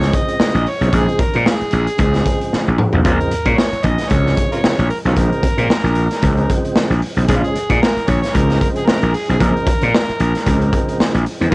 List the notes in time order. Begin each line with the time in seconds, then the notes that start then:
Already playing: C#3 F3 G#3 C4 C#5
0.01 snare, closed hi-hat
0.13 D#5, kick, closed hi-hat
0.28 closed hi-hat
0.40 muted slap bass stroke, snare
0.54 A#1, closed hi-hat
0.66 C#5, open hi-hat
0.80 B1 C#3 F3 G#3 C4, closed hi-hat
0.91 A#1 C#3 F3 G#3 C4 G#4, kick, closed hi-hat
1.08 closed hi-hat
1.19 A#4, muted slap bass stroke, kick, closed hi-hat
1.33 A#2 C#3 F3 G#3 C4, closed hi-hat
1.44 G#3 C4 C#4 F4 G#4, snare
1.61 muted slap bass stroke, closed hi-hat
1.71 A#1, closed hi-hat
1.87 closed hi-hat
1.97 C#2 C#3 F3 G#3 C4, kick, closed hi-hat
2.13 snare, closed hi-hat
2.26 kick, closed hi-hat
2.41 closed hi-hat
2.53 muted slap bass stroke, snare
2.68 A#1
2.78 mid tom
2.92 B1 C#3 F3 G#3 C4, floor tom
3.04 A#1 C#3 F3 G#3 C4 C#4 F4 A#4, kick, closed hi-hat
3.21 closed hi-hat
3.31 muted slap bass stroke, closed hi-hat
3.45 A#2 C#3 F3 G#3 C#4, kick, closed hi-hat
3.57 G#3 C4 C#5, snare
3.73 muted slap bass stroke, closed hi-hat
3.83 A#1 D#5, kick, closed hi-hat
3.98 snare, closed hi-hat
4.10 C#2 C3 C#3 F3 G#3 C#5, kick, closed hi-hat
4.26 snare
4.37 kick, closed hi-hat
4.52 F4 A#4 C#5, closed hi-hat
4.64 muted slap bass stroke, snare
4.79 A#1, closed hi-hat
4.90 A#4, open hi-hat
5.05 B1 C#3 F3 G#3 C4 C#4 F4 A#4, closed hi-hat
5.16 A#1 C#3 F3 G#3 C4, kick, closed hi-hat
5.32 closed hi-hat
5.43 muted slap bass stroke, kick, closed hi-hat
5.58 A#2 C#3 F3 G#3 C4, closed hi-hat
5.68 G#3 C4, muted slap bass stroke, snare
5.84 A#1, closed hi-hat
5.95 closed hi-hat
6.11 snare, closed hi-hat
6.22 C#2 C#3 F3 G#3 C4, kick, closed hi-hat
6.37 closed hi-hat
6.50 kick, closed hi-hat
6.64 closed hi-hat
6.75 muted slap bass stroke, snare
6.90 A#1, closed hi-hat
7.02 open hi-hat
7.16 B1 C#3 F3 G#3 C4, closed hi-hat
7.28 A#1 C#3 F3 G#3 C#4 G#4, kick, closed hi-hat
7.37 F4
7.44 G#4, closed hi-hat
7.55 muted slap bass stroke, closed hi-hat
7.70 A#2 C#3 F3 G#3 D#4, kick, closed hi-hat
7.82 G#3 C4 A#4, snare
7.97 muted slap bass stroke, closed hi-hat
8.08 A#1 C#5, kick, closed hi-hat
8.22 C#5, snare, closed hi-hat
8.35 C#2 C#3 F3 G#3 C4 A#4, kick, closed hi-hat
8.50 snare, closed hi-hat
8.61 A#4, kick, closed hi-hat
8.76 G#4, closed hi-hat
8.86 A#4, muted slap bass stroke, snare
9.03 A#1, closed hi-hat
9.14 G#4, open hi-hat
9.28 B1 C#3 F3 G#3 C4 G#4, closed hi-hat
9.39 A#1 C#3 F3 G#3 C4 A#4, kick, closed hi-hat
9.57 closed hi-hat
9.67 muted slap bass stroke, kick, closed hi-hat
9.81 A#2 C#3 F3 G#3 C4, closed hi-hat
9.93 G#3 C4, snare
10.09 muted slap bass stroke, closed hi-hat
10.20 A#1, closed hi-hat
10.35 snare, closed hi-hat
10.46 C#2 C#3 F3 G#3 C4, kick, closed hi-hat
10.61 closed hi-hat
10.73 kick, closed hi-hat
10.89 closed hi-hat
11.00 muted slap bass stroke, snare
11.15 A#1, closed hi-hat
11.26 open hi-hat
11.40 E2 C#3 F3 G#3 C4, closed hi-hat
11.51 C#3 F3 C#4 F4 A#4